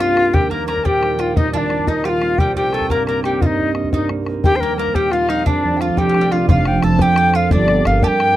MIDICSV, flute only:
0, 0, Header, 1, 2, 480
1, 0, Start_track
1, 0, Tempo, 341686
1, 473, Time_signature, 6, 3, 24, 8
1, 11753, End_track
2, 0, Start_track
2, 0, Title_t, "Flute"
2, 0, Program_c, 0, 73
2, 0, Note_on_c, 0, 65, 100
2, 480, Note_on_c, 0, 67, 93
2, 501, Note_off_c, 0, 65, 0
2, 711, Note_off_c, 0, 67, 0
2, 719, Note_on_c, 0, 70, 86
2, 940, Note_off_c, 0, 70, 0
2, 965, Note_on_c, 0, 70, 98
2, 1202, Note_on_c, 0, 67, 93
2, 1223, Note_off_c, 0, 70, 0
2, 1687, Note_on_c, 0, 65, 76
2, 1708, Note_off_c, 0, 67, 0
2, 1904, Note_off_c, 0, 65, 0
2, 1913, Note_on_c, 0, 63, 95
2, 2137, Note_off_c, 0, 63, 0
2, 2165, Note_on_c, 0, 65, 79
2, 2214, Note_on_c, 0, 62, 85
2, 2228, Note_off_c, 0, 65, 0
2, 2653, Note_on_c, 0, 63, 88
2, 2674, Note_off_c, 0, 62, 0
2, 2882, Note_on_c, 0, 67, 76
2, 2903, Note_off_c, 0, 63, 0
2, 2939, Note_on_c, 0, 65, 82
2, 2953, Note_off_c, 0, 67, 0
2, 3353, Note_on_c, 0, 67, 88
2, 3374, Note_off_c, 0, 65, 0
2, 3592, Note_off_c, 0, 67, 0
2, 3600, Note_on_c, 0, 67, 75
2, 3840, Note_on_c, 0, 69, 79
2, 3862, Note_off_c, 0, 67, 0
2, 4060, Note_off_c, 0, 69, 0
2, 4068, Note_on_c, 0, 70, 94
2, 4296, Note_off_c, 0, 70, 0
2, 4310, Note_on_c, 0, 70, 82
2, 4537, Note_off_c, 0, 70, 0
2, 4555, Note_on_c, 0, 67, 78
2, 4797, Note_on_c, 0, 65, 74
2, 4818, Note_off_c, 0, 67, 0
2, 4866, Note_on_c, 0, 63, 81
2, 4880, Note_off_c, 0, 65, 0
2, 5202, Note_off_c, 0, 63, 0
2, 5532, Note_on_c, 0, 63, 71
2, 5749, Note_off_c, 0, 63, 0
2, 6239, Note_on_c, 0, 67, 96
2, 6405, Note_on_c, 0, 72, 75
2, 6426, Note_off_c, 0, 67, 0
2, 6466, Note_on_c, 0, 70, 97
2, 6487, Note_off_c, 0, 72, 0
2, 6691, Note_off_c, 0, 70, 0
2, 6699, Note_on_c, 0, 70, 95
2, 6951, Note_on_c, 0, 67, 92
2, 6972, Note_off_c, 0, 70, 0
2, 7182, Note_on_c, 0, 65, 86
2, 7204, Note_off_c, 0, 67, 0
2, 7434, Note_on_c, 0, 63, 74
2, 7455, Note_off_c, 0, 65, 0
2, 7669, Note_off_c, 0, 63, 0
2, 7677, Note_on_c, 0, 62, 87
2, 8156, Note_on_c, 0, 65, 80
2, 8177, Note_off_c, 0, 62, 0
2, 8396, Note_on_c, 0, 67, 95
2, 8418, Note_off_c, 0, 65, 0
2, 8876, Note_on_c, 0, 65, 72
2, 8897, Note_off_c, 0, 67, 0
2, 9116, Note_off_c, 0, 65, 0
2, 9136, Note_on_c, 0, 77, 100
2, 9377, Note_on_c, 0, 79, 87
2, 9399, Note_off_c, 0, 77, 0
2, 9613, Note_on_c, 0, 81, 95
2, 9634, Note_off_c, 0, 79, 0
2, 9861, Note_on_c, 0, 79, 109
2, 9882, Note_off_c, 0, 81, 0
2, 10339, Note_on_c, 0, 77, 83
2, 10360, Note_off_c, 0, 79, 0
2, 10567, Note_off_c, 0, 77, 0
2, 10578, Note_on_c, 0, 74, 94
2, 11052, Note_on_c, 0, 77, 83
2, 11073, Note_off_c, 0, 74, 0
2, 11292, Note_on_c, 0, 81, 93
2, 11313, Note_off_c, 0, 77, 0
2, 11347, Note_on_c, 0, 79, 101
2, 11361, Note_off_c, 0, 81, 0
2, 11753, Note_off_c, 0, 79, 0
2, 11753, End_track
0, 0, End_of_file